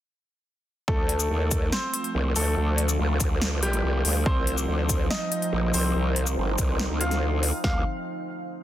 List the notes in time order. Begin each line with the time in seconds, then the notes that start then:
0.88 D2 F3 A3 F4 A4, kick
1.09 closed hi-hat
1.20 shaker
1.30 D#2
1.51 kick, closed hi-hat, shaker
1.72 C4 C5, snare
1.94 closed hi-hat
2.04 closed hi-hat
2.15 C2
2.36 D2 A3 A4, open hi-hat, shaker
2.57 D2
2.78 closed hi-hat
2.89 shaker
2.99 D2
3.20 kick, closed hi-hat, shaker
3.42 snare
3.63 G3 G4, closed hi-hat
3.73 closed hi-hat
3.84 C2
4.05 D2, open hi-hat
4.26 C2 C4 D#4 C5, kick
4.47 closed hi-hat
4.58 shaker
4.68 D2
4.89 kick, closed hi-hat, shaker
5.10 D#4 D#5, snare
5.32 closed hi-hat
5.42 closed hi-hat
5.53 A#1
5.74 C2 C4 C5, open hi-hat, shaker
5.95 C2
6.16 closed hi-hat
6.27 shaker
6.37 G1
6.58 C2, kick, closed hi-hat, shaker
6.79 snare
6.90 D2
7.01 F4 F5, closed hi-hat
7.11 snare, closed hi-hat
7.43 open hi-hat
7.64 D2 F5, kick, snare